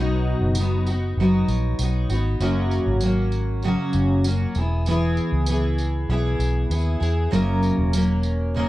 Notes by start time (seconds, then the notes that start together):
Already playing: B1 B2 F#3 B3 D#4
0.00 F#4
0.40 F#1
0.55 F#3, tambourine
0.59 B3 D#4 F#4
0.86 D#4 F#4, tambourine
0.91 B3
1.17 F#1 F#3 B3 D#4
1.21 F#4
1.48 A#1, tambourine
1.79 B1 F#3 B3 D#4 F#4, tambourine
2.09 G#1 B3 D#4 F#4, tambourine
2.40 F#1 F#2 C#3 F#3 A#3 C#4 F#4, tambourine
2.71 tambourine
2.86 G#1
3.01 F#3 A#3 C#4, tambourine
3.05 F#4
3.32 tambourine
3.63 F#2 C#3 F#3 A#3 C#4 F#4, tambourine
3.93 F#1, tambourine
4.24 F#3 A#3 C#4 F#4, tambourine
4.55 E1 E4 G#4, tambourine
4.60 B3
4.86 E3 B3 E4 G#4, tambourine
5.17 tambourine
5.32 C#2
5.46 E3 B3 E4, tambourine
5.51 G#4
5.78 tambourine
6.09 B1 E3 B3 E4 G#4
6.39 B1, tambourine
6.70 D#2 B3 E4 G#4, tambourine
7.00 E2 B3 E4 G#4, tambourine
7.31 F#1 F#2 C#3 F#3 A#3 C#4 A#4, tambourine
7.63 tambourine
7.78 E1
7.93 F#3 A#3 C#4 A#4, tambourine
8.23 tambourine
8.55 F#2 C#3 F#3 A#3 C#4 A#4